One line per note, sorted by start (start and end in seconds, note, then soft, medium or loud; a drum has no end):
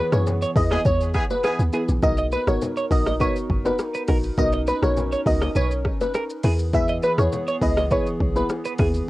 0.00 1.99 E3 medium
0.00 4.34 B3 medium
0.00 1.99 G#4 medium
0.00 0.10 B4 medium
0.12 0.45 F#2 medium
0.12 0.29 B3 medium
0.12 0.29 E4 medium
0.12 0.29 G#4 medium
0.12 0.29 B4 medium
0.12 0.38 C#5 medium
0.12 cross-stick loud
0.12 low bongo medium
0.12 shaker medium
0.26 high bongo medium
0.26 low conga medium
0.26 shaker medium
0.42 0.50 C#5 medium
0.42 shaker medium
0.55 0.78 E2 loud
0.55 0.73 B3 medium
0.55 0.73 E4 medium
0.55 0.73 G#4 medium
0.55 0.73 B4 medium
0.55 0.81 D#5 medium
0.55 kick loud
0.55 open hi-hat medium
0.55 shaker medium
0.71 0.80 B3 medium
0.71 0.80 E4 medium
0.71 0.80 G#4 loud
0.71 0.86 D#5 medium
0.71 cross-stick medium
0.71 low bongo medium
0.71 shaker medium
0.85 1.19 E2 loud
0.85 1.01 C#5 medium
0.85 0.98 C#5 medium
0.85 kick medium
0.85 low conga medium
0.85 shaker medium
1.01 shaker soft
1.14 1.24 B3 loud
1.14 1.24 E4 loud
1.14 1.24 G#4 loud
1.14 kick loud
1.14 cross-stick medium
1.14 shaker medium
1.30 1.42 B4 medium
1.30 low bongo medium
1.30 shaker soft
1.44 1.63 B3 medium
1.44 1.63 E4 loud
1.44 1.62 G#4 loud
1.44 1.53 B4 medium
1.44 cross-stick medium
1.44 high bongo medium
1.44 shaker medium
1.59 1.70 D#2 medium
1.59 shaker medium
1.73 1.91 B3 medium
1.73 1.91 E4 medium
1.73 1.91 G#4 medium
1.73 1.82 G#4 medium
1.73 1.91 B4 medium
1.73 high bongo medium
1.73 shaker medium
1.88 1.99 A#1 medium
1.88 high bongo medium
1.88 shaker medium
2.02 2.36 B1 loud
2.02 2.44 B3 medium
2.02 2.44 D#4 medium
2.02 6.40 D#4 medium
2.02 2.44 F#4 medium
2.02 6.40 A#4 medium
2.02 2.44 A#4 loud
2.02 2.16 D#5 loud
2.02 kick loud
2.02 low conga medium
2.02 shaker medium
2.17 2.26 D#5 medium
2.17 shaker medium
2.32 2.41 B4 medium
2.32 2.46 B4 medium
2.32 low bongo medium
2.32 shaker medium
2.47 2.58 G#1 medium
2.47 2.64 B3 medium
2.47 2.64 D#4 medium
2.47 2.64 F#4 medium
2.47 2.64 A#4 medium
2.47 2.73 C#5 medium
2.47 cross-stick loud
2.47 shaker medium
2.62 high bongo medium
2.62 low conga medium
2.62 shaker medium
2.77 2.85 C#5 medium
2.77 shaker medium
2.91 3.25 A#1 loud
2.91 3.08 B3 medium
2.91 3.08 D#4 medium
2.91 3.09 F#4 medium
2.91 3.09 A#4 medium
2.91 3.16 D#5 medium
2.91 kick loud
2.91 open hi-hat medium
2.91 shaker medium
3.06 3.14 D#5 medium
3.06 cross-stick medium
3.06 low bongo medium
3.06 shaker soft
3.20 3.38 B3 loud
3.20 3.38 D#4 medium
3.20 3.38 F#4 medium
3.20 3.38 A#4 loud
3.20 3.37 B4 medium
3.20 3.34 C#5 medium
3.20 kick medium
3.20 low conga medium
3.20 shaker medium
3.36 shaker soft
3.50 3.72 F#1 medium
3.50 kick loud
3.65 3.82 B3 medium
3.65 3.82 D#4 medium
3.65 3.82 F#4 medium
3.65 3.82 A#4 medium
3.65 3.77 B4 medium
3.65 low bongo medium
3.65 shaker medium
3.79 cross-stick medium
3.79 high bongo medium
3.79 shaker medium
3.94 4.02 B4 medium
3.94 shaker medium
4.08 4.31 A#1 loud
4.08 4.26 B3 medium
4.08 4.26 D#4 medium
4.08 4.26 F#4 medium
4.08 4.26 A#4 medium
4.08 4.17 A#4 medium
4.08 kick loud
4.08 cross-stick medium
4.08 open hi-hat medium
4.08 high bongo medium
4.08 shaker medium
4.24 shaker medium
4.38 4.72 B1 loud
4.38 4.79 B3 medium
4.38 6.42 C#4 medium
4.38 4.79 D#4 medium
4.38 4.79 F#4 medium
4.38 4.79 A#4 loud
4.38 4.51 D#5 loud
4.38 kick loud
4.38 low conga medium
4.38 shaker medium
4.52 4.61 D#5 medium
4.52 shaker medium
4.67 4.76 B4 medium
4.67 4.81 B4 medium
4.67 low bongo medium
4.67 shaker medium
4.82 5.15 A#1 medium
4.82 4.99 B3 medium
4.82 4.99 D#4 medium
4.82 4.99 F#4 medium
4.82 5.00 A#4 medium
4.82 5.08 C#5 medium
4.82 cross-stick loud
4.82 shaker medium
4.97 high bongo medium
4.97 low conga medium
4.97 shaker medium
5.12 5.20 C#5 medium
5.12 shaker soft
5.26 5.48 C#2 medium
5.26 5.44 B3 medium
5.26 5.44 D#4 medium
5.26 5.44 F#4 medium
5.26 5.44 A#4 medium
5.26 5.52 D#5 medium
5.26 kick loud
5.26 open hi-hat medium
5.26 shaker medium
5.42 5.49 D#5 medium
5.42 cross-stick medium
5.42 low bongo medium
5.42 shaker medium
5.55 5.89 B1 loud
5.55 5.72 B4 medium
5.55 5.69 C#5 loud
5.55 low conga medium
5.55 shaker medium
5.71 shaker soft
5.85 kick loud
5.85 cross-stick medium
6.01 6.13 B4 medium
6.01 low bongo medium
6.01 shaker medium
6.14 6.23 A#4 medium
6.14 cross-stick medium
6.14 high bongo medium
6.14 shaker medium
6.30 shaker medium
6.43 7.00 E2 loud
6.43 9.09 E3 medium
6.43 6.61 B3 medium
6.43 9.09 B3 medium
6.43 6.61 E4 medium
6.43 9.09 G#4 loud
6.43 6.62 G#4 medium
6.43 6.52 G#4 medium
6.43 6.62 B4 medium
6.43 open hi-hat medium
6.43 high bongo medium
6.43 shaker medium
6.59 shaker medium
6.73 7.14 B3 medium
6.73 7.14 E4 medium
6.73 7.14 G#4 medium
6.73 7.14 B4 loud
6.73 6.87 E5 loud
6.73 kick loud
6.73 low conga medium
6.73 shaker medium
6.88 6.97 D#5 medium
6.88 shaker medium
7.03 7.11 B4 medium
7.03 7.16 B4 medium
7.03 low bongo medium
7.03 shaker medium
7.18 7.29 E2 medium
7.18 7.35 B3 medium
7.18 7.35 E4 medium
7.18 7.35 G#4 medium
7.18 7.35 B4 medium
7.18 7.44 C#5 medium
7.18 cross-stick loud
7.18 shaker medium
7.32 high bongo medium
7.32 low conga medium
7.32 shaker medium
7.48 7.55 C#5 medium
7.48 shaker medium
7.61 7.95 C#2 loud
7.61 7.79 B3 medium
7.61 7.79 E4 medium
7.61 7.79 G#4 medium
7.61 7.79 B4 medium
7.61 7.87 D#5 medium
7.61 kick loud
7.61 open hi-hat medium
7.61 shaker medium
7.77 7.85 D#5 medium
7.77 cross-stick medium
7.77 low bongo medium
7.77 shaker medium
7.91 8.08 B3 loud
7.91 8.09 E4 medium
7.91 8.09 G#4 medium
7.91 8.09 B4 loud
7.91 8.07 B4 medium
7.91 8.05 C#5 medium
7.91 kick medium
7.91 low conga medium
7.91 shaker medium
8.06 shaker medium
8.20 8.43 B1 medium
8.20 kick loud
8.35 8.52 B3 medium
8.35 8.52 E4 medium
8.35 8.52 G#4 medium
8.35 8.52 B4 medium
8.35 8.48 B4 medium
8.35 low bongo medium
8.35 shaker medium
8.50 cross-stick medium
8.50 high bongo medium
8.50 shaker medium
8.65 8.73 B4 medium
8.65 shaker medium
8.79 9.01 D#2 medium
8.79 8.97 B3 medium
8.79 8.97 E4 medium
8.79 8.97 G#4 medium
8.79 8.88 G#4 medium
8.79 8.97 B4 medium
8.79 kick loud
8.79 cross-stick medium
8.79 open hi-hat medium
8.79 high bongo medium
8.79 shaker medium
8.94 shaker medium